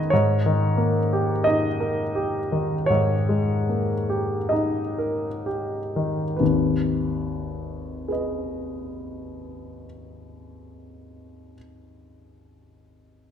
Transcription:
0, 0, Header, 1, 2, 480
1, 0, Start_track
1, 0, Key_signature, 5, "minor"
1, 0, Tempo, 1333333
1, 38, Time_signature, 4, 2, 24, 8
1, 518, Tempo, 1452785
1, 998, Tempo, 1639344
1, 1478, Tempo, 1863354
1, 1958, Tempo, 1680672
1, 2438, Tempo, 1734104
1, 3398, Tempo, 1643836
1, 3914, End_track
2, 0, Start_track
2, 0, Title_t, "Grand piano"
2, 0, Program_c, 0, 0
2, 0, Control_c, 0, 64, 127
2, 0, Note_on_c, 0, 51, 36
2, 0, Note_on_c, 0, 59, 37
2, 0, Note_on_c, 0, 63, 40
2, 0, Note_on_c, 0, 68, 37
2, 0, Note_on_c, 0, 71, 39
2, 0, Note_on_c, 0, 75, 59
2, 0, Note_on_c, 0, 76, 53
2, 37, Note_on_c, 0, 73, 61
2, 41, Note_off_c, 0, 51, 0
2, 46, Control_c, 0, 64, 0
2, 47, Note_off_c, 0, 68, 0
2, 48, Note_off_c, 0, 59, 0
2, 48, Note_off_c, 0, 71, 0
2, 48, Note_on_c, 0, 44, 44
2, 49, Note_off_c, 0, 63, 0
2, 49, Note_off_c, 0, 75, 0
2, 49, Note_off_c, 0, 76, 0
2, 132, Control_c, 0, 64, 127
2, 166, Note_on_c, 0, 51, 34
2, 279, Note_on_c, 0, 58, 36
2, 352, Note_off_c, 0, 51, 0
2, 406, Note_on_c, 0, 67, 35
2, 471, Note_off_c, 0, 58, 0
2, 518, Note_off_c, 0, 73, 0
2, 519, Note_on_c, 0, 75, 59
2, 529, Note_on_c, 0, 63, 36
2, 591, Note_off_c, 0, 67, 0
2, 638, Note_on_c, 0, 70, 37
2, 708, Note_off_c, 0, 63, 0
2, 754, Note_on_c, 0, 67, 33
2, 825, Note_off_c, 0, 70, 0
2, 876, Note_on_c, 0, 51, 32
2, 949, Note_off_c, 0, 67, 0
2, 989, Note_off_c, 0, 44, 0
2, 989, Note_on_c, 0, 73, 56
2, 998, Note_off_c, 0, 75, 0
2, 1001, Note_on_c, 0, 44, 36
2, 1069, Note_off_c, 0, 51, 0
2, 1114, Note_on_c, 0, 56, 31
2, 1232, Note_on_c, 0, 58, 28
2, 1305, Note_off_c, 0, 56, 0
2, 1351, Note_on_c, 0, 67, 32
2, 1428, Note_off_c, 0, 58, 0
2, 1466, Note_on_c, 0, 75, 44
2, 1474, Note_off_c, 0, 73, 0
2, 1476, Note_on_c, 0, 63, 31
2, 1546, Note_off_c, 0, 67, 0
2, 1595, Note_on_c, 0, 70, 29
2, 1668, Note_off_c, 0, 63, 0
2, 1715, Note_off_c, 0, 75, 0
2, 1717, Note_on_c, 0, 67, 27
2, 1797, Note_off_c, 0, 70, 0
2, 1846, Note_on_c, 0, 51, 27
2, 1913, Note_off_c, 0, 67, 0
2, 1949, Note_off_c, 0, 44, 0
2, 1951, Note_on_c, 0, 71, 38
2, 1959, Note_off_c, 0, 51, 0
2, 1959, Note_on_c, 0, 39, 33
2, 1960, Note_on_c, 0, 32, 33
2, 1967, Control_c, 0, 64, 0
2, 2057, Control_c, 0, 64, 127
2, 2440, Note_on_c, 0, 68, 30
2, 2441, Note_off_c, 0, 71, 0
2, 2445, Note_on_c, 0, 71, 28
2, 2452, Note_on_c, 0, 75, 28
2, 2928, Note_off_c, 0, 39, 0
2, 2929, Note_off_c, 0, 32, 0
2, 3395, Note_off_c, 0, 68, 0
2, 3400, Note_off_c, 0, 71, 0
2, 3407, Note_off_c, 0, 75, 0
2, 3914, End_track
0, 0, End_of_file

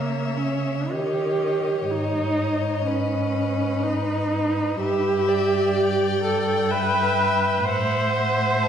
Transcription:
0, 0, Header, 1, 5, 480
1, 0, Start_track
1, 0, Key_signature, 5, "minor"
1, 0, Tempo, 1084991
1, 404, Tempo, 1001669
1, 884, Time_signature, 3, 2, 24, 8
1, 884, Tempo, 956938
1, 2335, Key_signature, 1, "minor"
1, 4279, End_track
2, 0, Start_track
2, 0, Title_t, "Violin"
2, 0, Program_c, 0, 40
2, 0, Note_on_c, 0, 76, 33
2, 401, Note_on_c, 0, 75, 40
2, 408, Note_off_c, 0, 76, 0
2, 2333, Note_off_c, 0, 75, 0
2, 2337, Note_on_c, 0, 76, 41
2, 2815, Note_on_c, 0, 79, 48
2, 2822, Note_off_c, 0, 76, 0
2, 3768, Note_on_c, 0, 78, 53
2, 3775, Note_off_c, 0, 79, 0
2, 4002, Note_off_c, 0, 78, 0
2, 4005, Note_on_c, 0, 78, 48
2, 4248, Note_on_c, 0, 81, 46
2, 4256, Note_off_c, 0, 78, 0
2, 4279, Note_off_c, 0, 81, 0
2, 4279, End_track
3, 0, Start_track
3, 0, Title_t, "Violin"
3, 0, Program_c, 1, 40
3, 0, Note_on_c, 1, 73, 32
3, 1365, Note_on_c, 1, 71, 43
3, 1373, Note_off_c, 1, 73, 0
3, 2330, Note_off_c, 1, 71, 0
3, 2333, Note_on_c, 1, 71, 43
3, 2573, Note_on_c, 1, 74, 43
3, 2581, Note_off_c, 1, 71, 0
3, 3285, Note_on_c, 1, 76, 46
3, 3293, Note_off_c, 1, 74, 0
3, 3764, Note_off_c, 1, 76, 0
3, 3767, Note_on_c, 1, 76, 44
3, 4279, Note_off_c, 1, 76, 0
3, 4279, End_track
4, 0, Start_track
4, 0, Title_t, "Viola"
4, 0, Program_c, 2, 41
4, 0, Note_on_c, 2, 58, 49
4, 165, Note_on_c, 2, 61, 40
4, 171, Note_off_c, 2, 58, 0
4, 405, Note_on_c, 2, 67, 49
4, 412, Note_off_c, 2, 61, 0
4, 884, Note_on_c, 2, 63, 57
4, 891, Note_off_c, 2, 67, 0
4, 1360, Note_off_c, 2, 63, 0
4, 1363, Note_on_c, 2, 61, 51
4, 1848, Note_on_c, 2, 63, 62
4, 1855, Note_off_c, 2, 61, 0
4, 2334, Note_off_c, 2, 63, 0
4, 2339, Note_on_c, 2, 67, 73
4, 3040, Note_off_c, 2, 67, 0
4, 3053, Note_on_c, 2, 69, 59
4, 3287, Note_on_c, 2, 71, 65
4, 3295, Note_off_c, 2, 69, 0
4, 3764, Note_on_c, 2, 72, 78
4, 3772, Note_off_c, 2, 71, 0
4, 4279, Note_off_c, 2, 72, 0
4, 4279, End_track
5, 0, Start_track
5, 0, Title_t, "Cello"
5, 0, Program_c, 3, 42
5, 0, Note_on_c, 3, 49, 35
5, 401, Note_on_c, 3, 51, 36
5, 407, Note_off_c, 3, 49, 0
5, 877, Note_off_c, 3, 51, 0
5, 879, Note_on_c, 3, 44, 43
5, 2312, Note_off_c, 3, 44, 0
5, 2338, Note_on_c, 3, 43, 44
5, 3747, Note_off_c, 3, 43, 0
5, 3765, Note_on_c, 3, 45, 48
5, 4279, Note_off_c, 3, 45, 0
5, 4279, End_track
0, 0, End_of_file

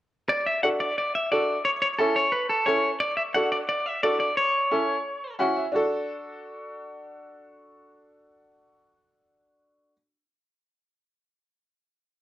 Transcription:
0, 0, Header, 1, 3, 480
1, 0, Start_track
1, 0, Key_signature, 2, "major"
1, 0, Tempo, 339559
1, 428, Time_signature, 4, 2, 24, 8
1, 17271, End_track
2, 0, Start_track
2, 0, Title_t, "Clean electric guitar"
2, 0, Program_c, 0, 27
2, 418, Note_on_c, 0, 74, 101
2, 645, Note_off_c, 0, 74, 0
2, 660, Note_on_c, 0, 76, 92
2, 889, Note_off_c, 0, 76, 0
2, 895, Note_on_c, 0, 78, 100
2, 965, Note_off_c, 0, 78, 0
2, 1134, Note_on_c, 0, 74, 95
2, 1362, Note_off_c, 0, 74, 0
2, 1386, Note_on_c, 0, 74, 91
2, 1608, Note_off_c, 0, 74, 0
2, 1626, Note_on_c, 0, 76, 99
2, 1848, Note_off_c, 0, 76, 0
2, 1861, Note_on_c, 0, 74, 98
2, 2307, Note_off_c, 0, 74, 0
2, 2329, Note_on_c, 0, 73, 101
2, 2400, Note_off_c, 0, 73, 0
2, 2569, Note_on_c, 0, 73, 91
2, 2640, Note_off_c, 0, 73, 0
2, 2805, Note_on_c, 0, 69, 78
2, 3035, Note_off_c, 0, 69, 0
2, 3051, Note_on_c, 0, 73, 93
2, 3278, Note_off_c, 0, 73, 0
2, 3279, Note_on_c, 0, 71, 84
2, 3520, Note_off_c, 0, 71, 0
2, 3525, Note_on_c, 0, 69, 86
2, 3754, Note_off_c, 0, 69, 0
2, 3758, Note_on_c, 0, 73, 92
2, 4102, Note_off_c, 0, 73, 0
2, 4241, Note_on_c, 0, 74, 101
2, 4472, Note_off_c, 0, 74, 0
2, 4479, Note_on_c, 0, 76, 99
2, 4549, Note_off_c, 0, 76, 0
2, 4727, Note_on_c, 0, 78, 92
2, 4955, Note_off_c, 0, 78, 0
2, 4974, Note_on_c, 0, 74, 90
2, 5045, Note_off_c, 0, 74, 0
2, 5213, Note_on_c, 0, 74, 85
2, 5457, Note_off_c, 0, 74, 0
2, 5457, Note_on_c, 0, 76, 94
2, 5695, Note_off_c, 0, 76, 0
2, 5701, Note_on_c, 0, 74, 88
2, 5918, Note_off_c, 0, 74, 0
2, 5935, Note_on_c, 0, 74, 79
2, 6159, Note_off_c, 0, 74, 0
2, 6178, Note_on_c, 0, 73, 88
2, 7564, Note_off_c, 0, 73, 0
2, 17271, End_track
3, 0, Start_track
3, 0, Title_t, "Upright piano"
3, 0, Program_c, 1, 0
3, 894, Note_on_c, 1, 62, 71
3, 896, Note_on_c, 1, 66, 64
3, 906, Note_on_c, 1, 69, 74
3, 1235, Note_off_c, 1, 62, 0
3, 1236, Note_off_c, 1, 66, 0
3, 1241, Note_off_c, 1, 69, 0
3, 1857, Note_on_c, 1, 62, 69
3, 1859, Note_on_c, 1, 66, 62
3, 1869, Note_on_c, 1, 69, 76
3, 2195, Note_off_c, 1, 62, 0
3, 2196, Note_off_c, 1, 66, 0
3, 2201, Note_off_c, 1, 69, 0
3, 2812, Note_on_c, 1, 61, 71
3, 2819, Note_on_c, 1, 64, 66
3, 2823, Note_on_c, 1, 69, 81
3, 3151, Note_off_c, 1, 61, 0
3, 3155, Note_off_c, 1, 64, 0
3, 3157, Note_off_c, 1, 69, 0
3, 3766, Note_on_c, 1, 61, 67
3, 3773, Note_on_c, 1, 64, 62
3, 3777, Note_on_c, 1, 69, 73
3, 4107, Note_off_c, 1, 61, 0
3, 4111, Note_off_c, 1, 64, 0
3, 4113, Note_off_c, 1, 69, 0
3, 4731, Note_on_c, 1, 62, 64
3, 4735, Note_on_c, 1, 66, 65
3, 4742, Note_on_c, 1, 69, 75
3, 5070, Note_off_c, 1, 62, 0
3, 5072, Note_off_c, 1, 66, 0
3, 5075, Note_off_c, 1, 69, 0
3, 5696, Note_on_c, 1, 62, 62
3, 5701, Note_on_c, 1, 66, 62
3, 5706, Note_on_c, 1, 69, 81
3, 6033, Note_off_c, 1, 62, 0
3, 6035, Note_off_c, 1, 66, 0
3, 6037, Note_off_c, 1, 69, 0
3, 6659, Note_on_c, 1, 61, 70
3, 6661, Note_on_c, 1, 64, 66
3, 6667, Note_on_c, 1, 69, 77
3, 6995, Note_off_c, 1, 61, 0
3, 6996, Note_off_c, 1, 64, 0
3, 6999, Note_off_c, 1, 69, 0
3, 7620, Note_on_c, 1, 61, 78
3, 7628, Note_on_c, 1, 64, 72
3, 7628, Note_on_c, 1, 78, 66
3, 7635, Note_on_c, 1, 66, 89
3, 7848, Note_off_c, 1, 78, 0
3, 7869, Note_on_c, 1, 76, 66
3, 7957, Note_off_c, 1, 61, 0
3, 7961, Note_off_c, 1, 64, 0
3, 7965, Note_off_c, 1, 66, 0
3, 8086, Note_on_c, 1, 62, 76
3, 8089, Note_off_c, 1, 76, 0
3, 8113, Note_on_c, 1, 66, 67
3, 8140, Note_on_c, 1, 69, 89
3, 14006, Note_off_c, 1, 62, 0
3, 14019, Note_off_c, 1, 66, 0
3, 14033, Note_off_c, 1, 69, 0
3, 17271, End_track
0, 0, End_of_file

